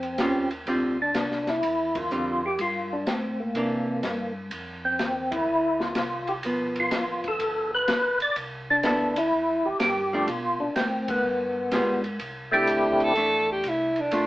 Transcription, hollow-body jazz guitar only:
0, 0, Header, 1, 2, 480
1, 0, Start_track
1, 0, Tempo, 480769
1, 667, Time_signature, 4, 2, 24, 8
1, 14244, End_track
2, 0, Start_track
2, 0, Title_t, "Hollow-body jazz guitar"
2, 0, Program_c, 0, 26
2, 188, Note_on_c, 0, 55, 60
2, 198, Note_on_c, 0, 61, 63
2, 202, Note_on_c, 0, 65, 65
2, 480, Note_off_c, 0, 55, 0
2, 485, Note_off_c, 0, 61, 0
2, 487, Note_off_c, 0, 65, 0
2, 673, Note_on_c, 0, 50, 57
2, 673, Note_on_c, 0, 55, 57
2, 678, Note_on_c, 0, 60, 63
2, 684, Note_on_c, 0, 65, 66
2, 963, Note_off_c, 0, 50, 0
2, 963, Note_off_c, 0, 55, 0
2, 965, Note_off_c, 0, 60, 0
2, 968, Note_off_c, 0, 65, 0
2, 2109, Note_on_c, 0, 50, 47
2, 2111, Note_on_c, 0, 55, 46
2, 2115, Note_on_c, 0, 60, 53
2, 2120, Note_on_c, 0, 65, 58
2, 2402, Note_off_c, 0, 50, 0
2, 2403, Note_off_c, 0, 55, 0
2, 2405, Note_off_c, 0, 60, 0
2, 2407, Note_off_c, 0, 65, 0
2, 3551, Note_on_c, 0, 52, 53
2, 3562, Note_on_c, 0, 58, 59
2, 3566, Note_on_c, 0, 62, 56
2, 4292, Note_off_c, 0, 52, 0
2, 4297, Note_off_c, 0, 58, 0
2, 4299, Note_off_c, 0, 62, 0
2, 6439, Note_on_c, 0, 53, 55
2, 6446, Note_on_c, 0, 59, 60
2, 7782, Note_off_c, 0, 53, 0
2, 7786, Note_off_c, 0, 59, 0
2, 8822, Note_on_c, 0, 59, 70
2, 8832, Note_on_c, 0, 64, 71
2, 8837, Note_on_c, 0, 69, 75
2, 9119, Note_off_c, 0, 59, 0
2, 9123, Note_off_c, 0, 64, 0
2, 9126, Note_off_c, 0, 69, 0
2, 10116, Note_on_c, 0, 53, 67
2, 10126, Note_on_c, 0, 57, 74
2, 10127, Note_on_c, 0, 62, 76
2, 10255, Note_off_c, 0, 53, 0
2, 10260, Note_off_c, 0, 57, 0
2, 10260, Note_off_c, 0, 62, 0
2, 11705, Note_on_c, 0, 55, 54
2, 11707, Note_on_c, 0, 59, 60
2, 11714, Note_on_c, 0, 65, 60
2, 11717, Note_on_c, 0, 68, 59
2, 11998, Note_off_c, 0, 55, 0
2, 11999, Note_off_c, 0, 59, 0
2, 12002, Note_off_c, 0, 65, 0
2, 12004, Note_off_c, 0, 68, 0
2, 13145, Note_on_c, 0, 57, 56
2, 13148, Note_on_c, 0, 62, 54
2, 13154, Note_on_c, 0, 64, 60
2, 13883, Note_off_c, 0, 57, 0
2, 13885, Note_off_c, 0, 62, 0
2, 13888, Note_off_c, 0, 64, 0
2, 14100, Note_on_c, 0, 57, 66
2, 14107, Note_on_c, 0, 62, 54
2, 14111, Note_on_c, 0, 65, 71
2, 14244, Note_off_c, 0, 57, 0
2, 14244, Note_off_c, 0, 62, 0
2, 14244, Note_off_c, 0, 65, 0
2, 14244, End_track
0, 0, End_of_file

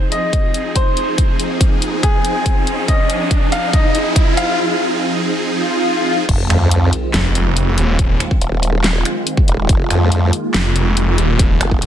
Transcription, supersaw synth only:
0, 0, Header, 1, 2, 480
1, 0, Start_track
1, 0, Key_signature, -4, "minor"
1, 0, Tempo, 425532
1, 1333, Time_signature, 4, 2, 24, 8
1, 13378, End_track
2, 0, Start_track
2, 0, Title_t, "Supersaw synth"
2, 0, Program_c, 0, 81
2, 0, Note_on_c, 0, 53, 80
2, 0, Note_on_c, 0, 60, 73
2, 0, Note_on_c, 0, 63, 70
2, 0, Note_on_c, 0, 68, 89
2, 7047, Note_off_c, 0, 68, 0
2, 7048, Note_off_c, 0, 53, 0
2, 7048, Note_off_c, 0, 60, 0
2, 7048, Note_off_c, 0, 63, 0
2, 7094, Note_on_c, 0, 51, 84
2, 13378, Note_off_c, 0, 51, 0
2, 13378, End_track
0, 0, End_of_file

